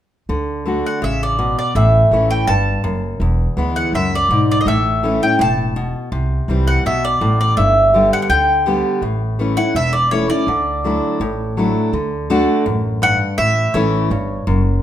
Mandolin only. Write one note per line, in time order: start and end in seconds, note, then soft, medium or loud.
0.86 1.03 F#5 medium
1.04 1.21 E5 medium
1.23 1.56 D5 medium
1.59 1.75 D5 medium
1.76 2.27 E5 medium
2.30 2.47 G5 medium
2.47 2.99 A5 medium
3.76 3.92 F#5 medium
3.95 4.14 E5 medium
4.15 4.50 D5 medium
4.51 4.60 D5 medium
4.61 4.67 D#5 medium
4.68 5.24 E5 medium
5.23 5.40 G5 medium
5.41 5.92 A5 medium
6.67 6.84 F#5 medium
6.86 7.03 E5 medium
7.05 7.38 D5 medium
7.41 7.56 D5 medium
7.57 8.09 E5 medium
8.13 8.21 F#5 medium
8.22 8.29 F#5 medium
8.30 8.81 G5 medium
9.57 9.75 F#5 loud
9.76 9.93 E5 medium
9.93 10.11 D5 medium
10.11 10.29 C#5 medium
10.30 11.52 D5 medium
13.03 13.37 F#5 loud
13.38 13.75 E5 loud
13.74 14.62 C#5 medium